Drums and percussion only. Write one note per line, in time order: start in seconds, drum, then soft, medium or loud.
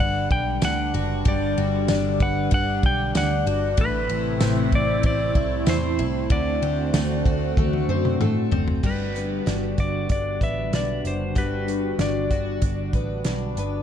0.31 kick medium
0.31 ride soft
0.62 snare loud
0.62 ride medium
0.62 tambourine medium
0.94 ride soft
1.25 kick loud
1.25 ride medium
1.58 ride soft
1.88 snare loud
1.88 ride medium
1.88 tambourine medium
2.20 kick medium
2.20 ride soft
2.51 kick loud
2.51 ride medium
2.83 kick medium
2.83 ride soft
3.15 snare loud
3.15 ride medium
3.15 tambourine medium
3.47 ride soft
3.77 kick loud
3.77 ride medium
4.09 ride soft
4.40 snare loud
4.40 ride medium
4.40 tambourine medium
4.72 kick medium
4.72 ride soft
5.03 kick loud
5.03 ride medium
5.35 kick medium
5.35 ride soft
5.66 snare loud
5.66 ride medium
5.66 tambourine medium
5.99 ride soft
6.30 kick loud
6.30 ride medium
6.62 ride soft
6.94 snare loud
6.94 ride medium
6.94 tambourine medium
7.26 kick medium
7.26 ride soft
7.57 kick loud
7.57 high tom medium
7.73 high tom medium
8.05 mid tom medium
8.21 mid tom medium
8.52 floor tom loud
8.68 floor tom medium
8.84 kick medium
8.84 crash medium
9.16 closed hi-hat soft
9.47 snare loud
9.47 closed hi-hat medium
9.78 kick medium
9.78 closed hi-hat soft
10.09 kick medium
10.09 closed hi-hat medium
10.41 kick medium
10.41 closed hi-hat soft
10.73 snare medium
10.73 closed hi-hat medium
11.05 closed hi-hat soft
11.36 kick medium
11.36 closed hi-hat medium
11.68 closed hi-hat soft
11.99 snare loud
11.99 closed hi-hat medium
12.31 kick medium
12.31 closed hi-hat soft
12.62 kick medium
12.62 closed hi-hat medium
12.93 kick medium
12.93 closed hi-hat soft
13.24 snare medium
13.24 closed hi-hat medium
13.57 closed hi-hat soft